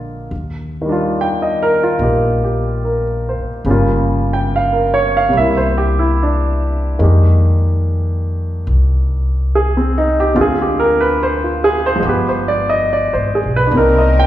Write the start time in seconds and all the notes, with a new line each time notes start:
Already playing: A#1 D3 G#3 A#3 F4 D5
0.31 D#2
0.81 D#3
0.86 G3 D4
0.92 F4
1.21 G5
1.42 D#5
1.62 A#4
1.83 F4
1.99 A#1 A#3 D#4 G4
2.44 G4
2.85 A#4
3.29 C5
3.38 muted upright bass stroke
3.65 G1 C#3 G3
3.69 A#3 F4
4.33 G5
4.56 F5
4.73 A#4
4.94 C#5
5.17 F5
5.29 C3 G3
5.33 C2 A#3
5.37 E4 E5
5.57 C5
5.78 G4
5.99 E4
6.23 D4
6.99 F2 D#3 G#3 A#3
7.04 G4
8.67 C2
9.55 G#4
9.77 C4
9.98 D#4
10.20 G4
10.34 D2 D3 G#3 C4 F4
10.41 G#4
10.62 G4
10.79 A#4
11.01 B4
11.23 C5
11.44 F4
11.64 G#4
11.86 C5
11.96 F3
12.00 G1 G#3 B3
12.06 G4 B4
12.29 C5
12.48 D5
12.69 D#5
12.93 D5
13.13 G#1 C5
13.35 G#4
13.43 B1
13.56 B4
13.67 D4
13.71 C2 A#3 C4 A#4
13.77 D#4 A#4
13.99 D#5
14.19 G5